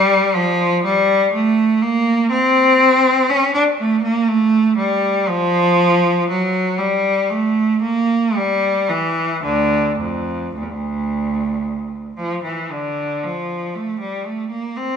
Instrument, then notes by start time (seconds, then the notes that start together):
cello
Already playing: G3
0.35 F3
0.84 G3
1.33 A3
1.82 A#3
2.31 C4
3.30 C#4
3.54 D4
3.78 A3
4.03 A#3
4.28 A3
4.77 G3
5.28 F3
6.29 F#3
6.79 G3
7.30 A3
7.82 A#3
8.35 G3
8.89 E3
9.43 D2 D3
9.99 F2
10.55 D2
10.62 E2
10.70 D2
12.17 F3
12.44 E3
12.71 D3
13.23 F3
13.75 A3
14.00 G3
14.25 A3
14.50 A#3
14.77 C4